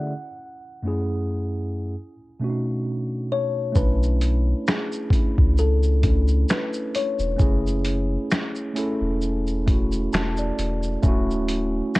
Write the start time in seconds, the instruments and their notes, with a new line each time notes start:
Already playing: tine electric piano D3 A3 C#4 E4 G#4 D5 E5 F#5
0.82 tine electric piano F#2 A3 C#4 E4
0.87 tine electric piano G#4
2.40 tine electric piano B2 A3 C#4 D4
2.44 tine electric piano F#4
2.50 tine electric piano D#4
3.32 kalimba C#5
3.72 sub bass B1, tine electric piano A3 C#4 D4, kick, shaker
3.76 tine electric piano E4, kalimba B4
4.03 shaker
4.21 closed hi-hat, shaker
4.67 kalimba G#4, finger snap, snare, shaker
4.92 shaker
5.10 tine electric piano A3 C#4 D4, kick, closed hi-hat, shaker
5.15 tine electric piano E4
5.38 sub bass C#2, kick
5.58 kalimba A4, shaker
5.83 shaker
6.02 tine electric piano A3 C#4 D4, kick, closed hi-hat, shaker
6.07 tine electric piano E4
6.28 shaker
6.49 kalimba B4, finger snap, snare, shaker
6.73 shaker
6.95 kalimba C#5, closed hi-hat, shaker
7.19 sub bass E1, shaker
7.36 sub bass F#1, tine electric piano A3 C#4 E4, kick, shaker
7.42 tine electric piano G#4
7.67 shaker
7.85 closed hi-hat, shaker
8.31 finger snap, snare, shaker
8.55 shaker
8.73 tine electric piano A3 C#4 E4, closed hi-hat, shaker
8.79 tine electric piano A4
9.01 sub bass E1
9.21 shaker
9.47 shaker
9.66 tine electric piano A3 C#4 E4, kick, closed hi-hat, shaker
9.72 tine electric piano F#4
9.92 shaker
10.13 sub bass E1, tine electric piano A5, finger snap, snare, shaker
10.37 tine electric piano D5, shaker
10.58 sub bass E1, closed hi-hat, shaker
10.83 shaker
11.02 sub bass D1, tine electric piano A3 C#4 E4, kick, shaker
11.08 tine electric piano F#4
11.31 shaker
11.48 closed hi-hat, shaker
11.95 finger snap, snare, shaker